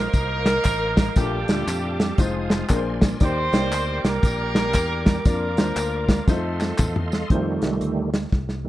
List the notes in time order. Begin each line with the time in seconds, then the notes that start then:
Already playing: A#3 D#4 A#4 C5 F5 D#6
0.13 C2, kick, closed hi-hat, tambourine
0.46 snare, clap, closed hi-hat, tambourine
0.64 A1, kick, clap, closed hi-hat, tambourine
0.97 kick, snare, closed hi-hat, tambourine
1.16 A#1 A#2 G3 A3 D4 F4 G4 A4 A#4 A5 D6, kick, closed hi-hat, tambourine
1.48 D2 A3 D4 F4 A4, snare, closed hi-hat, tambourine
1.67 F2, clap, closed hi-hat, tambourine
2.00 snare, closed hi-hat, tambourine
2.18 F1 F3 G#3 C4 D#4 F4 C5 G#5 D#6, kick, closed hi-hat, tambourine
2.50 snare, clap, closed hi-hat, tambourine
2.69 A#1 A#2 A#3 D4 G#4 A#4 D5 G#5 C6, kick, clap, closed hi-hat, tambourine
2.76 C5
3.01 kick, snare, closed hi-hat, tambourine
3.20 D#2 D#3 A#3 C4 D#4 G4 C5 D5 G5 D6, kick, closed hi-hat, tambourine
3.53 C2 A#3 D#4 G4 C#5, snare, closed hi-hat, tambourine
3.60 D5
3.72 D2, clap, closed hi-hat, tambourine
4.04 C2 A#3 D4 G4 A#4, snare, closed hi-hat, tambourine
4.23 A#1, kick, closed hi-hat, tambourine
4.55 snare, clap, closed hi-hat, tambourine
4.74 E2, kick, clap, closed hi-hat, tambourine
5.06 kick, snare, closed hi-hat, tambourine
5.25 F2 A#3 D4 F4 A#4 D5 F5, kick, closed hi-hat, tambourine
5.57 D#2 A#3 D4 F4 C5, snare, closed hi-hat, tambourine
5.76 D2, clap, closed hi-hat, tambourine
6.09 kick, snare, closed hi-hat, tambourine
6.28 F2 A3 C4 D#4 F4 A4 C5 D#5 C6, kick, snare, tambourine
6.60 snare, clap, tambourine
6.78 E2, kick, clap, mid tom, tambourine
6.96 floor tom
7.12 snare, tambourine
7.30 F2 D#3 G3 A3 D#4 F4 C5, kick, closed hi-hat
7.62 C2, snare, closed hi-hat
7.81 D2, closed hi-hat
8.14 snare, closed hi-hat
8.32 C2, kick, snare
8.49 snare
8.65 D#3 G3 A3